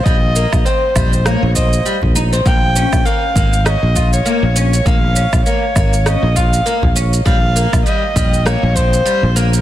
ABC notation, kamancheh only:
X:1
M:4/4
L:1/16
Q:"Swing 16ths" 1/4=100
K:Bbdor
V:1 name="Kamancheh"
e4 c4 d2 e4 z2 | g4 f4 e3 d4- d | f4 d4 e2 f4 z2 | f4 e4 d2 c4 B2 |]